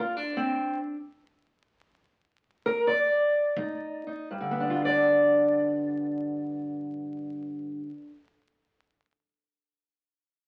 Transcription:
Already playing: D5
0.00 F4
0.17 D4
0.37 C4
2.66 A#4
2.87 D5
3.57 G#2 D#4, kick
4.07 D#4
4.31 G2
4.41 D3
4.51 B3
4.60 D4
4.70 F4
4.85 D5

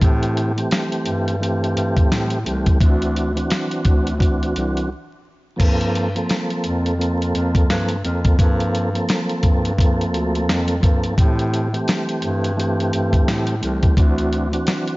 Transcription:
0.00 A2 E3 A3 C4 G4, kick, closed hi-hat
0.23 closed hi-hat
0.37 closed hi-hat
0.56 E3 A3 C4 G4, closed hi-hat
0.71 snare, closed hi-hat
0.92 closed hi-hat
1.06 G2, closed hi-hat
1.28 closed hi-hat
1.40 E3 A3 C4 G4, closed hi-hat
1.64 closed hi-hat
1.76 G2, closed hi-hat
1.97 kick, closed hi-hat
2.11 A2, snare, closed hi-hat
2.30 closed hi-hat
2.44 C2 E3 A3 C4 G4, closed hi-hat
2.66 kick, closed hi-hat
2.80 D2 E3 C4 D4 F#4, kick, closed hi-hat
3.02 closed hi-hat
3.16 closed hi-hat
3.35 E3 C4 D4 F#4, closed hi-hat
3.50 snare, closed hi-hat
3.71 closed hi-hat
3.85 D2, kick, closed hi-hat
4.07 closed hi-hat
4.18 E3 C4 D4 F#4, kick
4.22 closed hi-hat
4.43 closed hi-hat
4.56 C2, closed hi-hat
4.77 closed hi-hat
5.56 G2 F3 A#3 C4 A4, kick, crash
5.61 closed hi-hat
5.81 closed hi-hat
5.95 closed hi-hat
6.15 F3 A#3 C4 A4, closed hi-hat
6.29 snare, closed hi-hat
6.50 closed hi-hat
6.64 F2, closed hi-hat
6.86 closed hi-hat
6.97 F3 A#3 C4 A4, closed hi-hat
7.22 closed hi-hat
7.35 F2, closed hi-hat
7.55 kick, closed hi-hat
7.70 G2, snare, closed hi-hat
7.89 closed hi-hat
8.04 F2 F3 A#3 C4 A4, closed hi-hat
8.25 kick, closed hi-hat
8.38 G2 F3 A#3 C4 A4, kick, closed hi-hat
8.60 closed hi-hat
8.75 closed hi-hat
8.93 F3 A#3 C4 A4, closed hi-hat
9.09 snare, closed hi-hat
9.29 closed hi-hat
9.43 G2, kick, closed hi-hat
9.65 closed hi-hat
9.77 F3 A#3 C4 A4, kick, closed hi-hat
10.01 closed hi-hat
10.14 D2, closed hi-hat
10.35 closed hi-hat
10.49 F2, snare, closed hi-hat
10.68 closed hi-hat
10.80 G2 F3 A#3 C4 A4, kick, closed hi-hat
11.04 closed hi-hat
11.17 A2 E3 A3 C4 G4, kick, closed hi-hat
11.39 closed hi-hat
11.54 closed hi-hat
11.73 E3 A3 C4 G4, closed hi-hat
11.88 snare, closed hi-hat
12.09 closed hi-hat
12.22 G2, closed hi-hat
12.44 closed hi-hat
12.56 E3 A3 C4 G4, closed hi-hat
12.80 closed hi-hat
12.93 G2, closed hi-hat
13.13 kick, closed hi-hat
13.28 A2, snare, closed hi-hat
13.47 closed hi-hat
13.60 C2 E3 A3 C4 G4, closed hi-hat
13.83 kick, closed hi-hat
13.97 D2 E3 C4 D4 F#4, kick, closed hi-hat
14.18 closed hi-hat
14.33 closed hi-hat
14.52 E3 C4 D4 F#4, closed hi-hat
14.67 snare, closed hi-hat
14.88 closed hi-hat

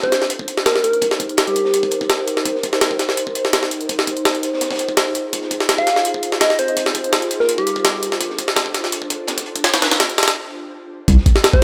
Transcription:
Already playing: D#4 G4 A#4 C5
0.03 C5, kick
0.12 snare, closed hi-hat
0.21 snare, closed hi-hat
0.30 closed hi-hat
0.39 kick
0.48 closed hi-hat
0.57 snare
0.66 A#4, snare, closed hi-hat
0.75 snare
0.84 A#4, closed hi-hat
0.93 closed hi-hat
1.01 kick, closed hi-hat
1.11 snare
1.20 kick, closed hi-hat
1.29 closed hi-hat
1.37 snare, closed hi-hat
1.47 G4, closed hi-hat
1.56 closed hi-hat
1.65 snare
1.74 closed hi-hat
1.83 kick, closed hi-hat
1.91 closed hi-hat
2.01 kick, closed hi-hat
2.10 snare, closed hi-hat
2.27 closed hi-hat
2.37 snare
2.45 kick, closed hi-hat
2.55 snare
2.63 kick, closed hi-hat
2.73 snare, closed hi-hat
2.81 snare, closed hi-hat
2.91 kick
2.99 snare, closed hi-hat
3.09 snare, closed hi-hat
3.17 closed hi-hat
3.27 kick
3.35 closed hi-hat
3.45 snare
3.53 snare, closed hi-hat
3.63 snare
3.71 closed hi-hat
3.81 closed hi-hat
3.89 F4 G#4, kick, closed hi-hat
3.99 snare
4.07 kick, closed hi-hat
4.17 closed hi-hat
4.25 snare, closed hi-hat
4.35 closed hi-hat
4.43 closed hi-hat
4.53 snare
4.61 snare, closed hi-hat
4.71 kick, snare, closed hi-hat
4.75 snare, closed hi-hat
4.79 closed hi-hat
4.88 kick, closed hi-hat
4.97 snare, closed hi-hat
5.15 closed hi-hat
5.33 kick, closed hi-hat
5.42 snare
5.51 kick, closed hi-hat
5.60 snare, closed hi-hat
5.69 snare, closed hi-hat
5.78 F5, kick
5.87 snare, closed hi-hat
5.96 snare, closed hi-hat
6.05 closed hi-hat
6.14 kick
6.23 closed hi-hat
6.32 snare
6.40 D#5, snare, closed hi-hat
6.50 snare
6.59 C5, closed hi-hat
6.68 closed hi-hat
6.77 kick, closed hi-hat
6.86 snare
6.95 kick, closed hi-hat
7.04 closed hi-hat
7.12 snare, closed hi-hat
7.22 closed hi-hat
7.31 closed hi-hat
7.40 A#4, snare
7.49 D4 A4, closed hi-hat
7.58 G4, kick, closed hi-hat
7.67 closed hi-hat
7.76 kick, closed hi-hat
7.85 snare, closed hi-hat
8.03 closed hi-hat
8.12 snare
8.21 kick, closed hi-hat
8.30 snare
8.38 kick, closed hi-hat
8.48 snare, closed hi-hat
8.56 snare, closed hi-hat
8.66 kick
8.74 snare, closed hi-hat
8.84 snare, closed hi-hat
8.92 G4, closed hi-hat
9.02 kick
9.10 kick, closed hi-hat
9.27 kick, snare, closed hi-hat
9.38 kick, snare, closed hi-hat
9.46 closed hi-hat
9.56 kick, closed hi-hat
9.64 snare, closed hi-hat
9.73 snare, closed hi-hat
9.82 snare, closed hi-hat
9.91 snare, closed hi-hat
10.00 snare, closed hi-hat
10.09 closed hi-hat
10.18 snare, closed hi-hat
10.23 snare, closed hi-hat
10.28 snare, closed hi-hat
11.08 C2 C4 D#4 G4 A#4, kick, closed hi-hat
11.18 snare
11.26 kick, closed hi-hat
11.35 snare, closed hi-hat
11.44 snare, closed hi-hat
11.53 C5, kick

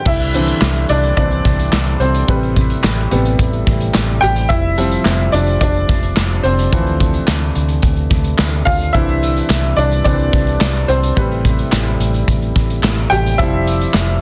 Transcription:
0.05 C2 D3 G3 C4 E4 E5, kick, crash
0.20 closed hi-hat
0.34 D3 E3 C4, closed hi-hat
0.48 closed hi-hat
0.61 C2, snare, clap
0.75 closed hi-hat
0.89 C2 D4 D5, closed hi-hat
1.04 closed hi-hat
1.17 C2 D3 E3 C4 D4 D5, kick, closed hi-hat
1.31 closed hi-hat
1.45 C2, kick, snare, closed hi-hat
1.60 closed hi-hat
1.72 C2, snare, clap
1.87 closed hi-hat
2.00 C2 C4 C5, closed hi-hat
2.15 closed hi-hat
2.27 A1 C3 G3 A3 E4 B4, kick, closed hi-hat
2.43 closed hi-hat
2.56 kick, closed hi-hat
2.70 closed hi-hat
2.83 A1, snare, clap
3.11 A1 C3 G3 B3, closed hi-hat
3.25 closed hi-hat
3.39 A1, kick, closed hi-hat
3.53 closed hi-hat
3.67 A1, kick, snare, closed hi-hat
3.80 closed hi-hat
3.94 A1, snare, clap
4.21 A1 G4 G5, closed hi-hat
4.36 closed hi-hat
4.49 F1 F3 E4 E5, kick, closed hi-hat
4.78 F3 G3 C4, closed hi-hat
4.91 closed hi-hat
5.05 F1, snare, clap
5.32 F1 D4 D5, closed hi-hat
5.47 closed hi-hat
5.61 F1 D4 D5, kick, closed hi-hat
5.75 closed hi-hat
5.89 F1, kick, snare, closed hi-hat
6.03 closed hi-hat
6.16 F1, snare, clap
6.31 closed hi-hat
6.43 F1 C4 C5, closed hi-hat
6.59 closed hi-hat
6.71 D2 E3 F3 A3 C4 D4, kick, closed hi-hat
6.87 closed hi-hat
7.00 kick, closed hi-hat
7.14 closed hi-hat
7.28 D2, snare, clap
7.55 D2, closed hi-hat
7.69 closed hi-hat
7.82 D2, kick, closed hi-hat
7.96 closed hi-hat
8.10 D2, kick, snare, closed hi-hat
8.24 closed hi-hat
8.38 D2, snare, clap
8.53 closed hi-hat
8.65 D2 F4 F5, kick, open hi-hat
8.81 closed hi-hat
8.93 C2 C3 D3 E3 G3 C4 D4 E4 E5, kick, closed hi-hat
9.09 closed hi-hat
9.23 closed hi-hat
9.37 closed hi-hat
9.49 C2, snare, clap
9.64 closed hi-hat
9.77 C2 D4 D5, closed hi-hat
9.92 closed hi-hat
10.04 C2 D3 E3 C4 D4 D5, kick, closed hi-hat
10.20 closed hi-hat
10.33 C2, kick, snare, closed hi-hat
10.47 closed hi-hat
10.61 C2, snare, clap
10.75 closed hi-hat
10.88 C2 C4 C5, closed hi-hat
11.03 closed hi-hat
11.15 A1 C3 G3 A3 E4 B4, kick, closed hi-hat
11.32 closed hi-hat
11.45 kick, closed hi-hat
11.59 closed hi-hat
11.72 A1, snare, clap
12.00 A1, closed hi-hat
12.14 closed hi-hat
12.28 A1, kick, closed hi-hat
12.42 closed hi-hat
12.56 A1, kick, snare, closed hi-hat
12.70 closed hi-hat
12.82 A1, snare, clap
12.98 closed hi-hat
13.10 A1 G4 G5, closed hi-hat
13.26 closed hi-hat
13.38 F1 F3 G3 C4 E4 G4 E5, kick, closed hi-hat
13.67 closed hi-hat
13.81 closed hi-hat
13.94 F1, snare, clap
14.08 closed hi-hat

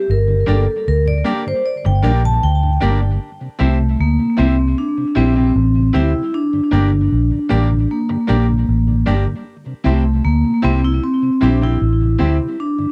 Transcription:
0.09 G1 A#4
0.28 G2 D3
0.47 G1 G3 A#3 D4 G4 A4 A#4 D5
0.88 D2 A#4
1.06 G2 D3 D5
1.24 G3 A#3 D4 G4 A#4 D5
1.46 G2 D3 C5
1.66 D5
1.85 G1 G2 D3 G5, muted clean electric guitar stroke
2.02 A#1 G3 A#3 D4 G4 A#4 D5
2.24 G2 D3 D4 G4 A5
2.43 D2 G5
2.63 G2 D3
2.80 G1 G3 A#3 D4 G4 A#4 D5
3.01 G2 D3 D4 G4
3.41 C3
3.59 C2 G3 A3 C4 E4 G4 C5 E5
3.81 C3
4.00 D2 A#3
4.20 C3
4.37 C2 G3 C4 E4 G4 C5 E5
4.58 C3
4.78 D4
4.98 C3
5.15 A#1 G3 C4 E4 G4 C5 E5
5.35 C3 C4 E4 G4, muted clean electric guitar stroke
5.56 A1
5.75 C3
5.93 D2 G3 C4 E4 G4 C5 E5
6.14 C3 E4 G4
6.34 D4
6.53 G2 D3
6.71 G1 G3 A#3 D4 G4 A#4 D5
6.92 G2 D3
7.12 A#1
7.31 G2 D3
7.49 A1 G3 A#3 D4 G4 A#4 D5
7.71 G2 D3
7.91 A#3
8.09 G2 D3 D4 G4, muted clean electric guitar stroke
8.27 A#1 G3 A#3 D4 G4 A#4 D5
8.49 G2 D3
8.69 A1
8.88 G2 D3
9.06 G1 G3 A#3 D4 G4 A#4 D5
9.27 G2 D3
9.66 C3
9.84 C2 G3 A3 C4 E4 G4 C5
10.05 C3
10.25 D2 A#3
10.45 C3
10.62 C2 G3 C4 E4 G4 C5
10.83 C3 E4
11.04 C4
11.22 C3
11.41 A#1 G3 C4 D4 E4 G4 C5
11.61 C3 C4 E4 G4, muted clean electric guitar stroke
11.81 A1
12.01 C3
12.19 D2 G3 C4 E4 G4 C5
12.40 C3 E4 G4
12.60 D4
12.79 G2 D3

